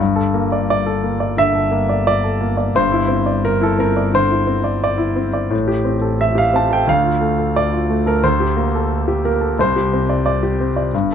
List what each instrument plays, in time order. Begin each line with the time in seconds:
0.00 double bass G1, grand piano G2
0.16 grand piano A4
0.34 grand piano A#3
0.52 grand piano D5
0.70 grand piano D5
0.86 grand piano A4
1.04 grand piano A#3
1.20 grand piano D5
1.37 grand piano D3 E5
1.55 grand piano A4
1.71 grand piano A#3
1.89 grand piano D5
2.07 grand piano D5
2.24 grand piano A4
2.41 grand piano A#3
2.57 grand piano D5
2.75 grand piano G2 C5
2.92 grand piano E4
3.08 grand piano C4
3.26 grand piano D5
3.45 grand piano A#4
3.61 grand piano E4 A4
3.78 grand piano C4 A#4
3.97 grand piano D5
4.13 grand piano D3 C5
4.31 grand piano E4
4.47 grand piano C4
4.64 grand piano D5
4.84 grand piano D5
4.98 grand piano E4
5.16 grand piano C4
5.33 grand piano D5
5.50 double bass A1, grand piano A2
5.68 grand piano G4
5.85 grand piano C4
6.01 grand piano A4
6.21 grand piano E5
6.35 grand piano G4 F5
6.53 grand piano C4 A5
6.70 grand piano A4 G5
6.87 grand piano D2 F5, double bass D2
7.04 grand piano F4
7.21 grand piano A3
7.39 grand piano A4
7.56 grand piano D5
7.73 grand piano F4
7.90 grand piano A3
8.06 grand piano A4 A#4
8.24 grand piano D2 C5
8.40 grand piano G4
8.57 grand piano A#3
8.75 grand piano A4
9.08 grand piano G4
9.25 grand piano A#3 A#4
9.41 grand piano A4
9.59 double bass C2, grand piano C2 C5
9.76 grand piano G4
9.93 grand piano C4
10.09 grand piano D5
10.26 grand piano D5
10.43 grand piano G4
10.60 grand piano C4
10.76 grand piano D5
10.94 double bass G1, grand piano G2